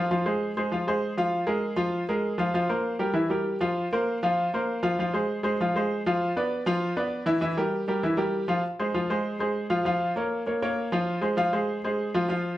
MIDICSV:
0, 0, Header, 1, 2, 480
1, 0, Start_track
1, 0, Key_signature, -4, "minor"
1, 0, Tempo, 304723
1, 158, Time_signature, 4, 2, 24, 8
1, 19808, End_track
2, 0, Start_track
2, 0, Title_t, "Grand piano"
2, 0, Program_c, 0, 0
2, 173, Note_on_c, 0, 53, 88
2, 173, Note_on_c, 0, 77, 81
2, 175, Note_on_c, 0, 65, 78
2, 364, Note_off_c, 0, 53, 0
2, 364, Note_off_c, 0, 77, 0
2, 365, Note_off_c, 0, 65, 0
2, 406, Note_on_c, 0, 68, 80
2, 407, Note_on_c, 0, 56, 82
2, 407, Note_on_c, 0, 72, 76
2, 797, Note_off_c, 0, 56, 0
2, 797, Note_off_c, 0, 68, 0
2, 798, Note_off_c, 0, 72, 0
2, 895, Note_on_c, 0, 56, 79
2, 899, Note_on_c, 0, 72, 77
2, 900, Note_on_c, 0, 68, 81
2, 1086, Note_off_c, 0, 56, 0
2, 1088, Note_off_c, 0, 68, 0
2, 1088, Note_off_c, 0, 72, 0
2, 1129, Note_on_c, 0, 53, 77
2, 1137, Note_on_c, 0, 65, 82
2, 1137, Note_on_c, 0, 77, 83
2, 1322, Note_off_c, 0, 53, 0
2, 1327, Note_off_c, 0, 65, 0
2, 1327, Note_off_c, 0, 77, 0
2, 1373, Note_on_c, 0, 56, 80
2, 1384, Note_on_c, 0, 68, 85
2, 1387, Note_on_c, 0, 72, 86
2, 1762, Note_off_c, 0, 56, 0
2, 1768, Note_off_c, 0, 68, 0
2, 1770, Note_off_c, 0, 72, 0
2, 1849, Note_on_c, 0, 53, 81
2, 1855, Note_on_c, 0, 65, 89
2, 1859, Note_on_c, 0, 77, 94
2, 2240, Note_off_c, 0, 53, 0
2, 2243, Note_off_c, 0, 65, 0
2, 2246, Note_off_c, 0, 77, 0
2, 2311, Note_on_c, 0, 68, 86
2, 2315, Note_on_c, 0, 56, 84
2, 2315, Note_on_c, 0, 70, 86
2, 2709, Note_off_c, 0, 68, 0
2, 2711, Note_off_c, 0, 56, 0
2, 2712, Note_off_c, 0, 70, 0
2, 2779, Note_on_c, 0, 53, 86
2, 2781, Note_on_c, 0, 65, 100
2, 2785, Note_on_c, 0, 77, 90
2, 3182, Note_off_c, 0, 53, 0
2, 3183, Note_off_c, 0, 65, 0
2, 3186, Note_off_c, 0, 77, 0
2, 3287, Note_on_c, 0, 56, 86
2, 3289, Note_on_c, 0, 68, 80
2, 3293, Note_on_c, 0, 70, 85
2, 3680, Note_off_c, 0, 56, 0
2, 3681, Note_off_c, 0, 68, 0
2, 3683, Note_off_c, 0, 70, 0
2, 3750, Note_on_c, 0, 53, 90
2, 3764, Note_on_c, 0, 65, 86
2, 3770, Note_on_c, 0, 77, 90
2, 3952, Note_off_c, 0, 53, 0
2, 3961, Note_off_c, 0, 65, 0
2, 3964, Note_off_c, 0, 77, 0
2, 4003, Note_on_c, 0, 53, 82
2, 4004, Note_on_c, 0, 65, 80
2, 4016, Note_on_c, 0, 77, 91
2, 4200, Note_off_c, 0, 53, 0
2, 4201, Note_off_c, 0, 65, 0
2, 4208, Note_off_c, 0, 77, 0
2, 4242, Note_on_c, 0, 72, 74
2, 4244, Note_on_c, 0, 58, 82
2, 4245, Note_on_c, 0, 70, 81
2, 4637, Note_off_c, 0, 72, 0
2, 4638, Note_off_c, 0, 58, 0
2, 4638, Note_off_c, 0, 70, 0
2, 4714, Note_on_c, 0, 67, 83
2, 4715, Note_on_c, 0, 55, 81
2, 4724, Note_on_c, 0, 70, 82
2, 4916, Note_off_c, 0, 55, 0
2, 4916, Note_off_c, 0, 67, 0
2, 4921, Note_off_c, 0, 70, 0
2, 4937, Note_on_c, 0, 52, 85
2, 4941, Note_on_c, 0, 64, 85
2, 4950, Note_on_c, 0, 76, 72
2, 5146, Note_off_c, 0, 52, 0
2, 5148, Note_off_c, 0, 64, 0
2, 5153, Note_off_c, 0, 76, 0
2, 5192, Note_on_c, 0, 55, 82
2, 5199, Note_on_c, 0, 67, 81
2, 5213, Note_on_c, 0, 70, 85
2, 5591, Note_off_c, 0, 55, 0
2, 5595, Note_off_c, 0, 67, 0
2, 5604, Note_off_c, 0, 70, 0
2, 5680, Note_on_c, 0, 53, 88
2, 5687, Note_on_c, 0, 65, 90
2, 5687, Note_on_c, 0, 77, 88
2, 6076, Note_off_c, 0, 53, 0
2, 6080, Note_off_c, 0, 65, 0
2, 6080, Note_off_c, 0, 77, 0
2, 6183, Note_on_c, 0, 58, 89
2, 6185, Note_on_c, 0, 70, 83
2, 6189, Note_on_c, 0, 72, 81
2, 6570, Note_off_c, 0, 58, 0
2, 6571, Note_off_c, 0, 70, 0
2, 6573, Note_off_c, 0, 72, 0
2, 6660, Note_on_c, 0, 53, 90
2, 6666, Note_on_c, 0, 77, 86
2, 6669, Note_on_c, 0, 65, 95
2, 7048, Note_off_c, 0, 53, 0
2, 7052, Note_off_c, 0, 77, 0
2, 7053, Note_off_c, 0, 65, 0
2, 7147, Note_on_c, 0, 58, 85
2, 7154, Note_on_c, 0, 70, 85
2, 7159, Note_on_c, 0, 72, 76
2, 7532, Note_off_c, 0, 58, 0
2, 7536, Note_off_c, 0, 70, 0
2, 7539, Note_off_c, 0, 72, 0
2, 7604, Note_on_c, 0, 53, 88
2, 7606, Note_on_c, 0, 65, 91
2, 7611, Note_on_c, 0, 77, 94
2, 7802, Note_off_c, 0, 53, 0
2, 7803, Note_off_c, 0, 65, 0
2, 7806, Note_off_c, 0, 77, 0
2, 7862, Note_on_c, 0, 53, 83
2, 7870, Note_on_c, 0, 65, 84
2, 7877, Note_on_c, 0, 77, 90
2, 8053, Note_off_c, 0, 53, 0
2, 8057, Note_off_c, 0, 65, 0
2, 8062, Note_off_c, 0, 77, 0
2, 8088, Note_on_c, 0, 56, 77
2, 8091, Note_on_c, 0, 68, 80
2, 8101, Note_on_c, 0, 72, 84
2, 8482, Note_off_c, 0, 56, 0
2, 8483, Note_off_c, 0, 68, 0
2, 8489, Note_off_c, 0, 72, 0
2, 8558, Note_on_c, 0, 56, 84
2, 8558, Note_on_c, 0, 68, 82
2, 8570, Note_on_c, 0, 72, 84
2, 8758, Note_off_c, 0, 68, 0
2, 8759, Note_off_c, 0, 56, 0
2, 8766, Note_off_c, 0, 72, 0
2, 8829, Note_on_c, 0, 53, 81
2, 8829, Note_on_c, 0, 65, 86
2, 8843, Note_on_c, 0, 77, 78
2, 9017, Note_off_c, 0, 53, 0
2, 9017, Note_off_c, 0, 65, 0
2, 9025, Note_off_c, 0, 77, 0
2, 9064, Note_on_c, 0, 56, 88
2, 9070, Note_on_c, 0, 68, 77
2, 9079, Note_on_c, 0, 72, 83
2, 9451, Note_off_c, 0, 56, 0
2, 9455, Note_off_c, 0, 68, 0
2, 9459, Note_off_c, 0, 72, 0
2, 9552, Note_on_c, 0, 53, 95
2, 9555, Note_on_c, 0, 65, 89
2, 9561, Note_on_c, 0, 77, 87
2, 9936, Note_off_c, 0, 53, 0
2, 9937, Note_off_c, 0, 65, 0
2, 9941, Note_off_c, 0, 77, 0
2, 10026, Note_on_c, 0, 59, 83
2, 10030, Note_on_c, 0, 71, 88
2, 10034, Note_on_c, 0, 74, 86
2, 10412, Note_off_c, 0, 59, 0
2, 10414, Note_off_c, 0, 71, 0
2, 10417, Note_off_c, 0, 74, 0
2, 10494, Note_on_c, 0, 53, 96
2, 10500, Note_on_c, 0, 65, 104
2, 10507, Note_on_c, 0, 77, 99
2, 10885, Note_off_c, 0, 53, 0
2, 10888, Note_off_c, 0, 65, 0
2, 10892, Note_off_c, 0, 77, 0
2, 10974, Note_on_c, 0, 59, 85
2, 10977, Note_on_c, 0, 74, 84
2, 10978, Note_on_c, 0, 71, 86
2, 11365, Note_off_c, 0, 59, 0
2, 11367, Note_off_c, 0, 71, 0
2, 11367, Note_off_c, 0, 74, 0
2, 11434, Note_on_c, 0, 52, 90
2, 11442, Note_on_c, 0, 64, 98
2, 11444, Note_on_c, 0, 76, 90
2, 11636, Note_off_c, 0, 52, 0
2, 11641, Note_off_c, 0, 64, 0
2, 11642, Note_off_c, 0, 76, 0
2, 11672, Note_on_c, 0, 52, 95
2, 11678, Note_on_c, 0, 64, 89
2, 11684, Note_on_c, 0, 76, 90
2, 11875, Note_off_c, 0, 52, 0
2, 11879, Note_off_c, 0, 64, 0
2, 11882, Note_off_c, 0, 76, 0
2, 11928, Note_on_c, 0, 67, 86
2, 11933, Note_on_c, 0, 55, 82
2, 11936, Note_on_c, 0, 70, 91
2, 12321, Note_off_c, 0, 67, 0
2, 12324, Note_off_c, 0, 55, 0
2, 12326, Note_off_c, 0, 70, 0
2, 12408, Note_on_c, 0, 55, 91
2, 12417, Note_on_c, 0, 67, 89
2, 12424, Note_on_c, 0, 70, 83
2, 12604, Note_off_c, 0, 55, 0
2, 12610, Note_off_c, 0, 67, 0
2, 12614, Note_off_c, 0, 70, 0
2, 12653, Note_on_c, 0, 52, 84
2, 12653, Note_on_c, 0, 64, 83
2, 12658, Note_on_c, 0, 76, 75
2, 12847, Note_off_c, 0, 52, 0
2, 12847, Note_off_c, 0, 64, 0
2, 12850, Note_off_c, 0, 76, 0
2, 12872, Note_on_c, 0, 55, 88
2, 12878, Note_on_c, 0, 70, 86
2, 12886, Note_on_c, 0, 67, 86
2, 13272, Note_off_c, 0, 55, 0
2, 13275, Note_off_c, 0, 70, 0
2, 13280, Note_off_c, 0, 67, 0
2, 13358, Note_on_c, 0, 53, 91
2, 13368, Note_on_c, 0, 65, 96
2, 13372, Note_on_c, 0, 77, 88
2, 13558, Note_off_c, 0, 53, 0
2, 13564, Note_off_c, 0, 65, 0
2, 13566, Note_off_c, 0, 77, 0
2, 13853, Note_on_c, 0, 56, 78
2, 13854, Note_on_c, 0, 68, 82
2, 13860, Note_on_c, 0, 72, 78
2, 14047, Note_off_c, 0, 56, 0
2, 14047, Note_off_c, 0, 68, 0
2, 14051, Note_off_c, 0, 72, 0
2, 14088, Note_on_c, 0, 65, 83
2, 14089, Note_on_c, 0, 53, 86
2, 14093, Note_on_c, 0, 77, 84
2, 14284, Note_off_c, 0, 65, 0
2, 14285, Note_off_c, 0, 53, 0
2, 14287, Note_off_c, 0, 77, 0
2, 14331, Note_on_c, 0, 68, 80
2, 14334, Note_on_c, 0, 56, 89
2, 14339, Note_on_c, 0, 72, 85
2, 14723, Note_off_c, 0, 68, 0
2, 14725, Note_off_c, 0, 56, 0
2, 14727, Note_off_c, 0, 72, 0
2, 14797, Note_on_c, 0, 56, 77
2, 14810, Note_on_c, 0, 72, 82
2, 14815, Note_on_c, 0, 68, 79
2, 15194, Note_off_c, 0, 56, 0
2, 15201, Note_off_c, 0, 72, 0
2, 15205, Note_off_c, 0, 68, 0
2, 15277, Note_on_c, 0, 65, 90
2, 15280, Note_on_c, 0, 53, 89
2, 15281, Note_on_c, 0, 77, 82
2, 15477, Note_off_c, 0, 65, 0
2, 15479, Note_off_c, 0, 53, 0
2, 15479, Note_off_c, 0, 77, 0
2, 15517, Note_on_c, 0, 53, 90
2, 15530, Note_on_c, 0, 77, 92
2, 15531, Note_on_c, 0, 65, 91
2, 15914, Note_off_c, 0, 53, 0
2, 15921, Note_off_c, 0, 77, 0
2, 15922, Note_off_c, 0, 65, 0
2, 16002, Note_on_c, 0, 58, 79
2, 16016, Note_on_c, 0, 73, 71
2, 16019, Note_on_c, 0, 70, 80
2, 16396, Note_off_c, 0, 58, 0
2, 16405, Note_off_c, 0, 73, 0
2, 16406, Note_off_c, 0, 70, 0
2, 16481, Note_on_c, 0, 58, 68
2, 16487, Note_on_c, 0, 70, 69
2, 16496, Note_on_c, 0, 73, 69
2, 16679, Note_off_c, 0, 58, 0
2, 16683, Note_off_c, 0, 70, 0
2, 16688, Note_off_c, 0, 73, 0
2, 16732, Note_on_c, 0, 58, 80
2, 16736, Note_on_c, 0, 70, 88
2, 16736, Note_on_c, 0, 73, 87
2, 17122, Note_off_c, 0, 58, 0
2, 17124, Note_off_c, 0, 70, 0
2, 17124, Note_off_c, 0, 73, 0
2, 17203, Note_on_c, 0, 53, 93
2, 17208, Note_on_c, 0, 65, 96
2, 17218, Note_on_c, 0, 77, 86
2, 17597, Note_off_c, 0, 53, 0
2, 17600, Note_off_c, 0, 65, 0
2, 17605, Note_off_c, 0, 77, 0
2, 17661, Note_on_c, 0, 56, 83
2, 17668, Note_on_c, 0, 68, 82
2, 17678, Note_on_c, 0, 72, 84
2, 17867, Note_off_c, 0, 56, 0
2, 17871, Note_off_c, 0, 68, 0
2, 17876, Note_off_c, 0, 72, 0
2, 17909, Note_on_c, 0, 53, 94
2, 17917, Note_on_c, 0, 65, 90
2, 17919, Note_on_c, 0, 77, 99
2, 18111, Note_off_c, 0, 53, 0
2, 18116, Note_off_c, 0, 65, 0
2, 18117, Note_off_c, 0, 77, 0
2, 18158, Note_on_c, 0, 56, 81
2, 18161, Note_on_c, 0, 68, 82
2, 18163, Note_on_c, 0, 72, 82
2, 18553, Note_off_c, 0, 56, 0
2, 18554, Note_off_c, 0, 68, 0
2, 18556, Note_off_c, 0, 72, 0
2, 18654, Note_on_c, 0, 56, 79
2, 18660, Note_on_c, 0, 68, 85
2, 18660, Note_on_c, 0, 72, 80
2, 19041, Note_off_c, 0, 56, 0
2, 19045, Note_off_c, 0, 68, 0
2, 19045, Note_off_c, 0, 72, 0
2, 19131, Note_on_c, 0, 53, 98
2, 19135, Note_on_c, 0, 77, 82
2, 19137, Note_on_c, 0, 65, 92
2, 19323, Note_off_c, 0, 53, 0
2, 19325, Note_off_c, 0, 77, 0
2, 19326, Note_off_c, 0, 65, 0
2, 19357, Note_on_c, 0, 53, 83
2, 19365, Note_on_c, 0, 65, 89
2, 19370, Note_on_c, 0, 77, 95
2, 19751, Note_off_c, 0, 53, 0
2, 19755, Note_off_c, 0, 65, 0
2, 19758, Note_off_c, 0, 77, 0
2, 19808, End_track
0, 0, End_of_file